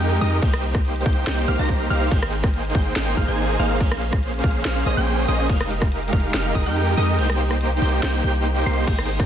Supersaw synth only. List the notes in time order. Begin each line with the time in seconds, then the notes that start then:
Already playing: G#3 D#4 G4 A#4 G5
0.21 G#3 D#4 G4 A#4 D#5
0.42 A#3 D#4 G4 C5 G5
1.06 A#3 D#4 G4 C5 G5
1.27 A#3 D#4 G4 C5 G5
1.48 A#3 D#4 G4 C5 F5
1.59 A#3 D#4 G4 C5 A#5
1.90 A#3 D#4 G4 C5 F5
2.12 A#3 D#4 G#4 C5 G5
2.75 A#3 D#4 G#4 C5 G5
2.96 A#3 D#4 G#4 C5 G5
3.17 A#3 D#4 G#4 C5 F5
3.28 A#3 D#4 G#4 C5 G#5
3.59 A#3 D#4 G#4 C5 F5
3.81 A#3 C#4 G#4 C5 F5
4.44 A#3 C#4 G#4 C5 F5
4.65 A#3 C#4 G#4 C5 F5
4.86 A#3 C#4 G#4 C5 D#5
4.97 A#3 C#4 G#4 C5 G5
5.28 A#3 C#4 G#4 C5 D#5
5.50 G#3 D#4 G4 A#4 F5
6.13 G#3 D#4 G4 A#4 F5
6.34 G#3 D#4 G4 A#4 F5
6.55 G#3 D#4 G4 A#4 D#5
6.66 G#3 D#4 G4 A#4 G5
6.97 G#3 D#4 G4 A#4 D#5
7.18 A#3 D#4 G4 C5 G5
7.82 A#3 D#4 G4 C5 G5
8.03 A#3 D#4 G4 C5 G5
8.24 A#3 D#4 G4 C5 G5
8.66 A#3 D#4 G4 C5 C6
8.87 A#3 D#4 G#4 C5 G5